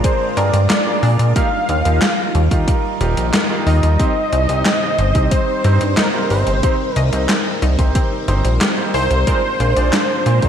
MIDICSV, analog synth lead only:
0, 0, Header, 1, 2, 480
1, 0, Start_track
1, 0, Key_signature, -3, "minor"
1, 0, Tempo, 659341
1, 989, Time_signature, 4, 2, 24, 8
1, 7635, End_track
2, 0, Start_track
2, 0, Title_t, "Analog synth lead"
2, 0, Program_c, 0, 81
2, 31, Note_on_c, 0, 72, 98
2, 271, Note_on_c, 0, 74, 98
2, 282, Note_off_c, 0, 72, 0
2, 506, Note_off_c, 0, 74, 0
2, 510, Note_on_c, 0, 74, 101
2, 961, Note_off_c, 0, 74, 0
2, 989, Note_on_c, 0, 77, 124
2, 1920, Note_off_c, 0, 77, 0
2, 2668, Note_on_c, 0, 75, 127
2, 3867, Note_on_c, 0, 72, 108
2, 3878, Note_off_c, 0, 75, 0
2, 4347, Note_on_c, 0, 70, 97
2, 4358, Note_off_c, 0, 72, 0
2, 4583, Note_off_c, 0, 70, 0
2, 4587, Note_on_c, 0, 72, 90
2, 5075, Note_off_c, 0, 72, 0
2, 5075, Note_on_c, 0, 70, 90
2, 5279, Note_off_c, 0, 70, 0
2, 6511, Note_on_c, 0, 72, 122
2, 7635, Note_off_c, 0, 72, 0
2, 7635, End_track
0, 0, End_of_file